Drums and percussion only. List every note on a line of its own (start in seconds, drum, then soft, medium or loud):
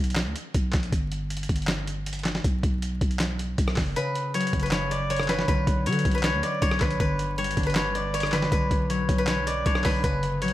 0.04 closed hi-hat medium
0.10 closed hi-hat medium
0.15 snare loud
0.15 clap loud
0.15 closed hi-hat medium
0.36 closed hi-hat medium
0.54 kick medium
0.54 closed hi-hat medium
0.73 kick loud
0.73 snare medium
0.73 clap medium
0.73 closed hi-hat medium
0.83 closed hi-hat medium
0.92 kick loud
0.92 closed hi-hat medium
1.12 closed hi-hat medium
1.30 closed hi-hat medium
1.37 closed hi-hat medium
1.43 closed hi-hat medium
1.49 kick medium
1.49 closed hi-hat medium
1.56 closed hi-hat medium
1.62 closed hi-hat soft
1.67 snare loud
1.67 clap loud
1.67 closed hi-hat medium
1.87 closed hi-hat medium
2.06 closed hi-hat medium
2.13 closed hi-hat medium
2.19 closed hi-hat medium
2.24 snare medium
2.24 clap medium
2.24 closed hi-hat medium
2.35 snare medium
2.44 kick loud
2.44 closed hi-hat medium
2.63 kick loud
2.63 closed hi-hat medium
2.82 closed hi-hat medium
3.01 kick medium
3.01 closed hi-hat medium
3.11 closed hi-hat soft
3.19 snare loud
3.19 clap loud
3.19 closed hi-hat medium
3.39 closed hi-hat medium
3.58 kick medium
3.58 closed hi-hat medium
3.68 cross-stick loud
3.76 kick medium
3.76 snare medium
3.76 clap medium
3.76 open hi-hat medium
3.96 closed hi-hat medium
4.15 closed hi-hat medium
4.34 closed hi-hat medium
4.41 closed hi-hat medium
4.47 closed hi-hat medium
4.53 kick medium
4.53 closed hi-hat medium
4.60 closed hi-hat medium
4.66 closed hi-hat soft
4.71 cross-stick medium
4.71 snare loud
4.71 clap loud
4.71 closed hi-hat medium
4.91 closed hi-hat medium
5.10 closed hi-hat medium
5.16 cross-stick loud
5.16 closed hi-hat medium
5.23 closed hi-hat medium
5.28 snare medium
5.28 clap medium
5.28 closed hi-hat medium
5.39 snare medium
5.48 kick loud
5.48 closed hi-hat medium
5.67 kick loud
5.67 closed hi-hat medium
5.86 closed hi-hat medium
5.92 closed hi-hat medium
5.99 closed hi-hat medium
6.05 kick medium
6.05 closed hi-hat medium
6.11 closed hi-hat medium
6.18 closed hi-hat medium
6.23 cross-stick medium
6.23 snare loud
6.23 clap loud
6.23 closed hi-hat medium
6.43 closed hi-hat medium
6.62 kick loud
6.62 closed hi-hat medium
6.71 cross-stick loud
6.80 kick loud
6.80 snare medium
6.80 clap medium
6.80 closed hi-hat medium
6.91 closed hi-hat medium
7.00 kick loud
7.00 closed hi-hat medium
7.19 closed hi-hat medium
7.38 closed hi-hat medium
7.44 closed hi-hat medium
7.51 closed hi-hat medium
7.57 kick medium
7.57 closed hi-hat medium
7.63 closed hi-hat medium
7.70 closed hi-hat medium
7.75 cross-stick medium
7.75 snare loud
7.75 clap loud
7.75 closed hi-hat medium
7.95 closed hi-hat medium
8.14 closed hi-hat medium
8.20 cross-stick loud
8.20 closed hi-hat medium
8.27 closed hi-hat medium
8.32 snare medium
8.32 clap medium
8.32 closed hi-hat medium
8.42 snare medium
8.52 kick loud
8.52 closed hi-hat medium
8.71 kick loud
8.71 closed hi-hat medium
8.90 closed hi-hat medium
9.09 kick medium
9.09 closed hi-hat medium
9.18 closed hi-hat soft
9.27 snare loud
9.27 clap loud
9.27 closed hi-hat medium
9.47 closed hi-hat medium
9.66 kick loud
9.66 closed hi-hat medium
9.75 cross-stick loud
9.84 kick loud
9.84 snare medium
9.84 clap medium
9.84 open hi-hat medium
10.04 kick loud
10.04 closed hi-hat medium
10.23 closed hi-hat medium
10.42 closed hi-hat medium
10.48 closed hi-hat medium